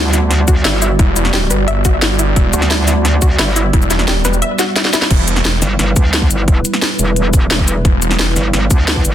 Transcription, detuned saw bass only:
0, 0, Header, 1, 2, 480
1, 0, Start_track
1, 0, Key_signature, 1, "minor"
1, 0, Tempo, 342857
1, 1387, Time_signature, 4, 2, 24, 8
1, 12804, End_track
2, 0, Start_track
2, 0, Title_t, "Detuned saw bass"
2, 0, Program_c, 0, 39
2, 1389, Note_on_c, 0, 28, 96
2, 1609, Note_off_c, 0, 28, 0
2, 1628, Note_on_c, 0, 28, 100
2, 2089, Note_off_c, 0, 28, 0
2, 2109, Note_on_c, 0, 31, 96
2, 3289, Note_off_c, 0, 31, 0
2, 3308, Note_on_c, 0, 28, 99
2, 3529, Note_off_c, 0, 28, 0
2, 5227, Note_on_c, 0, 28, 100
2, 5448, Note_off_c, 0, 28, 0
2, 5467, Note_on_c, 0, 28, 95
2, 5928, Note_off_c, 0, 28, 0
2, 5949, Note_on_c, 0, 28, 96
2, 6188, Note_off_c, 0, 28, 0
2, 7148, Note_on_c, 0, 28, 96
2, 7849, Note_off_c, 0, 28, 0
2, 10990, Note_on_c, 0, 28, 99
2, 11689, Note_off_c, 0, 28, 0
2, 12804, End_track
0, 0, End_of_file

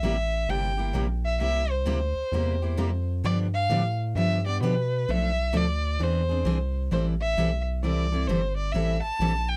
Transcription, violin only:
0, 0, Header, 1, 2, 480
1, 0, Start_track
1, 0, Tempo, 459067
1, 1468, Time_signature, 4, 2, 24, 8
1, 10004, End_track
2, 0, Start_track
2, 0, Title_t, "Violin"
2, 0, Program_c, 0, 40
2, 0, Note_on_c, 0, 76, 96
2, 519, Note_on_c, 0, 79, 97
2, 535, Note_off_c, 0, 76, 0
2, 994, Note_off_c, 0, 79, 0
2, 1310, Note_on_c, 0, 76, 86
2, 1464, Note_off_c, 0, 76, 0
2, 1475, Note_on_c, 0, 76, 103
2, 1778, Note_on_c, 0, 72, 82
2, 1794, Note_off_c, 0, 76, 0
2, 3216, Note_off_c, 0, 72, 0
2, 3400, Note_on_c, 0, 74, 86
2, 3535, Note_off_c, 0, 74, 0
2, 3704, Note_on_c, 0, 77, 113
2, 4146, Note_off_c, 0, 77, 0
2, 4353, Note_on_c, 0, 76, 98
2, 4649, Note_off_c, 0, 76, 0
2, 4673, Note_on_c, 0, 74, 92
2, 4820, Note_off_c, 0, 74, 0
2, 4837, Note_on_c, 0, 71, 88
2, 5338, Note_on_c, 0, 76, 103
2, 5353, Note_off_c, 0, 71, 0
2, 5820, Note_on_c, 0, 74, 87
2, 5835, Note_off_c, 0, 76, 0
2, 6307, Note_on_c, 0, 72, 84
2, 6322, Note_off_c, 0, 74, 0
2, 7072, Note_off_c, 0, 72, 0
2, 7239, Note_on_c, 0, 72, 76
2, 7374, Note_off_c, 0, 72, 0
2, 7542, Note_on_c, 0, 76, 100
2, 7984, Note_off_c, 0, 76, 0
2, 8197, Note_on_c, 0, 74, 80
2, 8651, Note_on_c, 0, 72, 88
2, 8666, Note_off_c, 0, 74, 0
2, 8952, Note_off_c, 0, 72, 0
2, 8958, Note_on_c, 0, 74, 77
2, 9117, Note_on_c, 0, 76, 86
2, 9133, Note_off_c, 0, 74, 0
2, 9427, Note_off_c, 0, 76, 0
2, 9433, Note_on_c, 0, 81, 101
2, 9916, Note_on_c, 0, 79, 89
2, 9932, Note_off_c, 0, 81, 0
2, 10004, Note_off_c, 0, 79, 0
2, 10004, End_track
0, 0, End_of_file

